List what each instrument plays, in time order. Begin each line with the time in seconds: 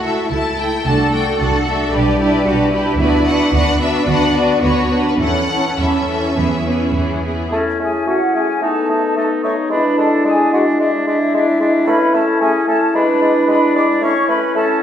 Already playing: double bass section C#2, cello section F#4
0.03 viola section A3 E4, violin section A4 E5
0.30 double bass section C#2, viola section A3 E4, cello section E4, violin section A4 A5
0.57 viola section A3 E4, violin section A4 G5
0.84 double bass section C2, viola section A3 D4, violin section F#4 A4 A5, cello section A4
1.12 viola section A3 D4, violin section F#4 A4 G5
1.40 double bass section C2, viola section A3 D4, violin section F#4 A4 F#5
1.66 viola section A3 D4, violin section F#4 A4 E5
1.92 double bass section B1, viola section G3 D4, cello section G4, violin section G4 B4 D5
2.19 viola section G3 D4, cello section E4, violin section G4 B4
2.46 double bass section B1, viola section G3 D4, cello section F#4, violin section G4 B4
2.73 viola section G3 D4, cello section E4, violin section G4 B4
2.99 double bass section D2, viola section B3 D4, violin section F#4 B4 D5
3.27 viola section B3 D4, violin section F#4 B4 F#5
3.53 double bass section D2, viola section B3 D4, cello section D4, violin section F#4 B4 F#5
3.80 viola section B3 D4, violin section F#4 B4 E5
4.07 double bass section D2, viola section B3 D4, violin section F#4 B4 F#5
4.34 viola section B3 D4, violin section F#4 B4 D5
4.62 double bass section D2, viola section B3 D4, cello section F#4, violin section F#4 B4 C#5
4.90 viola section B3 D4, violin section F#4 B4
5.08 violin section B4
5.19 double bass section E2, viola section E3 C#4, cello section C#4, violin section E4 A4 F#5
5.49 viola section E3 C#4, violin section E4 A4
5.78 double bass section E2, viola section E3 C#4, violin section E4 A4 E5
6.07 viola section E3 C#4, violin section E4 A4
6.36 double bass section E2, viola section E3 B3, violin section E4 G#4
6.65 viola section E3 B3, violin section E4 G#4
6.94 double bass section E2, viola section E3 B3, violin section E4 G#4
7.24 viola section E3 B3, violin section E4 G#4
7.52 bassoon A3, oboe C#4, french horn section C#4 E4, clarinet A4, flute section A5
7.80 bassoon A3, oboe C#4, clarinet G#4, flute section G#5
8.06 bassoon A3, oboe C#4, clarinet F#4, flute section F#5
8.35 bassoon A3, oboe C#4, clarinet G#4, flute section G#5
8.61 bassoon A3, french horn section B3 D#4, oboe D#4, clarinet A4, flute section A5
8.89 bassoon A3, oboe D#4
9.16 bassoon A3, oboe D#4, clarinet A4, flute section A5
9.44 bassoon A3, oboe D#4, clarinet C#5, flute section C#6
9.70 bassoon G#3, oboe D4, french horn section D4 E4, clarinet B4, flute section B5
9.98 bassoon G#3, oboe D4, clarinet A4, flute section A5
10.25 bassoon G#3, oboe D4, clarinet G#4, flute section G#5
10.52 bassoon G#3, oboe D4, clarinet F#4, flute section F#5
10.79 bassoon G#3, oboe D4, clarinet E4, flute section E5
11.07 bassoon G#3, oboe D4
11.34 bassoon G#3, oboe D4
11.60 bassoon G#3, oboe D4
11.87 bassoon A3, french horn section C#4, oboe C#4, clarinet B4, flute section B5
12.14 bassoon A3, oboe C#4, clarinet A4, flute section A5
12.40 bassoon A3, oboe C#4, clarinet G#4, flute section G#5
12.67 bassoon A3, oboe C#4, clarinet A4, flute section A5
12.94 bassoon G#3, french horn section D4, oboe D4, clarinet B4, flute section B5
13.21 bassoon G#3, oboe D4
13.46 bassoon G#3, oboe D4, clarinet B4, flute section B5
13.74 bassoon G#3, oboe D4, clarinet D5, flute section D6
14.01 bassoon A3, french horn section C#4 E4, oboe C#4, clarinet C#5, flute section C#6
14.28 bassoon A3, oboe C#4, clarinet B4, flute section B5
14.54 bassoon A3, oboe C#4, clarinet A4, flute section A5